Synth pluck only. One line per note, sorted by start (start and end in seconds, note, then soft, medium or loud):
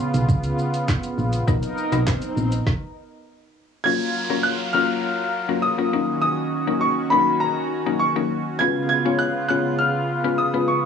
0.00 0.11 G#3 medium
0.00 0.11 C#4 medium
0.00 0.11 F4 medium
0.00 0.11 B4 loud
1.47 1.69 F#3 medium
1.47 1.69 B3 medium
1.47 1.69 D#4 medium
1.47 1.69 A#4 loud
1.92 2.34 F#3 medium
1.92 2.34 B3 medium
1.92 2.34 D#4 medium
1.92 2.35 A#4 loud
3.85 4.06 F#3 medium
3.85 4.06 A#3 medium
3.85 4.06 C#4 medium
3.85 4.07 F4 medium
3.85 4.07 A#4 medium
4.30 4.51 F#3 medium
4.30 4.51 A#3 medium
4.30 4.51 C#4 medium
4.30 4.51 F4 medium
4.30 4.51 A#4 medium
4.74 5.09 F#3 medium
4.74 5.09 A#3 medium
4.74 5.10 C#4 medium
4.74 5.10 F4 medium
4.74 5.10 A#4 medium
5.48 5.63 F#3 medium
5.48 5.63 A#3 medium
5.48 5.63 C#4 medium
5.48 5.63 F4 medium
5.48 5.63 A#4 medium
5.78 5.92 F#3 medium
5.78 5.92 A#3 medium
5.78 5.92 C#4 medium
5.78 5.93 F4 medium
5.78 5.92 A#4 medium
5.93 6.53 F#3 medium
5.93 6.53 A#3 medium
5.93 6.53 C#4 medium
5.93 6.53 D#4 medium
5.93 6.53 A#4 medium
6.67 6.88 F#3 medium
6.67 6.88 A#3 medium
6.67 6.89 C#4 medium
6.67 6.89 D#4 medium
6.67 6.89 A#4 medium
7.12 7.47 F#3 medium
7.12 7.47 A#3 medium
7.12 7.47 C#4 medium
7.12 7.47 D#4 medium
7.12 7.47 A#4 medium
7.86 8.00 F#3 medium
7.86 8.00 A#3 medium
7.86 8.00 C#4 medium
7.86 8.00 D#4 medium
7.86 8.01 A#4 medium
8.16 8.37 F#3 medium
8.16 8.37 A#3 medium
8.16 8.37 C#4 medium
8.16 8.37 D#4 medium
8.16 8.37 A#4 medium
8.60 8.82 G#3 medium
8.60 8.82 B3 medium
8.60 8.82 C#4 medium
8.60 8.82 F4 medium
8.60 8.82 B4 medium
9.05 9.26 G#3 medium
9.05 9.26 B3 medium
9.05 9.26 C#4 medium
9.05 9.26 F4 medium
9.05 9.26 C#5 medium
9.50 9.85 G#3 medium
9.50 9.85 B3 medium
9.50 9.85 C#4 medium
9.50 9.85 F4 medium
9.50 9.85 C#5 medium
10.24 10.38 G#3 medium
10.24 10.38 B3 medium
10.24 10.38 C#4 medium
10.24 10.38 F4 medium
10.24 10.38 B4 medium
10.54 10.75 G#3 medium
10.54 10.75 B3 medium
10.54 10.75 C#4 medium
10.54 10.75 F4 medium
10.54 10.75 B4 medium